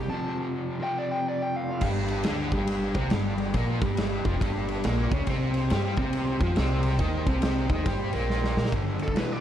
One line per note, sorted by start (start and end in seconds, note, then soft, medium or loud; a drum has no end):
0.08 0.78 F2 medium
0.08 0.79 C3 medium
0.08 0.79 F3 medium
0.08 0.36 A5 medium
0.80 1.82 F2 medium
0.80 1.82 C3 medium
0.80 1.81 F3 medium
0.80 0.96 G5 medium
0.98 1.11 D5 medium
1.11 1.25 G5 medium
1.28 1.41 D5 medium
1.43 1.56 G5 medium
1.51 1.73 G3 medium
1.51 1.75 A3 medium
1.56 1.77 B3 medium
1.56 1.78 C4 medium
1.56 1.83 F5 medium
1.63 1.79 D4 medium
1.63 1.81 E4 medium
1.69 1.82 F4 medium
1.69 1.83 G4 medium
1.74 1.85 A4 medium
1.74 1.81 B4 medium
1.79 2.22 G1 medium
1.79 2.25 G2 loud
1.79 5.23 G3 medium
1.79 2.25 G3 medium
1.79 5.24 D4 medium
1.79 5.24 B4 medium
1.79 1.87 C5 medium
1.79 kick medium
1.79 crash loud
2.08 ride medium
2.23 2.52 D3 medium
2.23 2.52 D4 medium
2.23 snare loud
2.23 ride medium
2.52 2.92 G1 medium
2.52 2.95 G2 medium
2.52 2.95 G3 loud
2.52 kick loud
2.52 ride medium
2.67 ride loud
2.94 3.10 C2 loud
2.94 3.11 C3 medium
2.94 3.11 C4 loud
2.94 kick loud
2.94 ride medium
3.10 3.52 G1 loud
3.10 3.54 G2 medium
3.10 3.54 G3 loud
3.10 snare loud
3.10 ride medium
3.38 ride medium
3.54 3.80 A#1 loud
3.54 3.81 A#2 medium
3.54 3.81 A#3 loud
3.54 kick medium
3.54 ride medium
3.82 4.22 G1 loud
3.82 4.24 G2 medium
3.82 4.25 G3 loud
3.82 kick loud
3.82 ride medium
3.97 snare loud
3.97 ride loud
4.25 4.40 F1 loud
4.25 4.40 F2 medium
4.25 4.41 F3 loud
4.25 kick loud
4.25 ride medium
4.41 4.81 G1 medium
4.41 4.84 G2 medium
4.41 4.85 G3 medium
4.41 kick loud
4.41 ride loud
4.69 ride medium
4.84 5.10 A#1 loud
4.84 5.11 A#2 loud
4.84 5.11 A#3 loud
4.84 snare loud
4.84 ride loud
5.12 5.26 C#2 medium
5.12 5.27 C#3 medium
5.12 5.28 C#4 loud
5.12 kick loud
5.12 ride medium
5.26 5.67 C2 medium
5.26 5.71 C3 loud
5.26 8.69 G3 medium
5.26 8.69 C4 medium
5.26 5.71 C4 medium
5.26 8.69 C5 medium
5.26 kick loud
5.26 ride loud
5.54 ride medium
5.70 5.96 G2 loud
5.70 5.97 G3 medium
5.70 5.98 G4 medium
5.70 snare loud
5.70 ride loud
5.97 6.38 C2 medium
5.97 6.40 C3 medium
5.97 6.41 C4 loud
5.97 kick loud
5.97 ride medium
6.13 ride loud
6.40 6.55 F2 medium
6.40 6.57 F3 medium
6.40 6.57 F4 medium
6.40 kick loud
6.40 ride medium
6.56 6.97 C2 loud
6.56 6.99 C3 medium
6.56 7.00 C4 loud
6.56 snare loud
6.56 ride medium
6.83 ride medium
6.99 7.25 D#2 loud
6.99 7.26 D#3 loud
6.99 7.27 D#4 loud
6.99 kick loud
6.99 ride medium
7.26 7.67 C2 loud
7.26 7.69 C3 medium
7.26 7.70 C4 loud
7.26 kick loud
7.26 ride medium
7.42 snare loud
7.42 ride loud
7.69 7.85 D#2 loud
7.69 7.85 D#3 loud
7.69 7.86 D#4 medium
7.69 kick loud
7.69 ride medium
7.85 8.11 G2 medium
7.85 8.12 G3 medium
7.85 8.13 G4 medium
7.85 kick loud
7.85 ride loud
8.13 8.54 A#1 medium
8.13 8.56 A#2 medium
8.13 8.55 A#3 loud
8.13 ride medium
8.30 snare medium
8.44 snare medium
8.57 8.72 A#2 medium
8.57 8.72 A#3 medium
8.57 8.73 A#4 medium
8.57 snare loud
8.65 snare medium
8.72 9.01 G2 loud
8.72 9.13 G2 medium
8.72 9.13 D3 medium
8.72 kick medium
8.72 ride medium
8.99 9.07 D2 medium
8.99 9.17 A4 medium
8.99 ride medium
9.08 9.14 D2 medium
9.08 kick medium
9.16 9.40 G2 medium
9.16 9.40 B2 medium
9.16 9.40 E3 medium
9.16 9.32 B4 medium
9.16 snare loud
9.16 ride medium
9.32 9.40 D5 medium